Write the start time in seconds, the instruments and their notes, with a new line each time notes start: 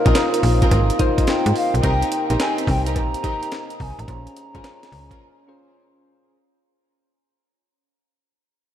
Already playing: french horn section C3 A#3 F4, synth keys D#4 F4 A#4 C5, soft synth lead A#4
0.05 fm bass A#1, string section C4 F4 G#4 A#4, synth keys D#4 F4 A#4 D#5, kick, closed hi-hat
0.15 snare, clap, closed hi-hat, cowbell
0.34 closed hi-hat
0.43 fm bass A#1, open hi-hat
0.62 string section C4 F4 G#4 A#4, kick, closed hi-hat
0.71 fm bass G#1, kick, closed hi-hat, cowbell
0.90 closed hi-hat
0.99 synth keys D#4 F4 A#4 C5, kick, closed hi-hat
1.18 kick, closed hi-hat
1.27 soft synth lead G5, snare, clap, closed hi-hat, cowbell
1.46 fm bass G#2, closed hi-hat
1.56 soft synth lead F5, open hi-hat
1.74 fm bass B1, soft synth lead G5, closed hi-hat
1.83 fm bass C2, string section C4 D#4 G4 A#4, french horn section D#4, synth keys D#4 G4 A#4 C5, kick, closed hi-hat, cowbell
2.02 closed hi-hat
2.12 closed hi-hat
2.29 fm bass A#1, string section C4 D#4 G4 A#4, synth keys D#4 G4 A#4 C5, closed hi-hat
2.39 string section C4 D#4 G4 A#4, soft synth lead G#5, snare, clap, closed hi-hat, cowbell
2.58 closed hi-hat
2.67 fm bass C2, soft synth lead G5, kick, open hi-hat
2.86 string section C4 D#4 G4 A#4, closed hi-hat
2.96 fm bass A#1, soft synth lead A#5, kick, closed hi-hat, cowbell
3.14 closed hi-hat
3.23 string section C4 D#4 G4 A#4, synth keys D#4 G4 A#4 D#5, kick, closed hi-hat
3.43 closed hi-hat
3.52 snare, clap, closed hi-hat, cowbell
3.70 closed hi-hat
3.80 fm bass C2, soft synth lead G#5, kick, open hi-hat
3.99 fm bass A1, soft synth lead A#5, closed hi-hat
4.07 fm bass A#1, french horn section A#2 G#3 C#4, synth keys C#4 F4 G#4 C5, kick, closed hi-hat, cowbell
4.27 closed hi-hat
4.37 closed hi-hat
4.54 fm bass G#1, string section C#4 F4 G#4 A#4, synth keys C#4 F4 G#4 C5, kick, closed hi-hat
4.64 snare, clap, closed hi-hat, cowbell
4.83 snare, closed hi-hat
4.92 fm bass C#2, open hi-hat
5.10 string section C#4 F4 G#4 A#4, kick, closed hi-hat
5.48 synth keys C#4 F4 G#4 C5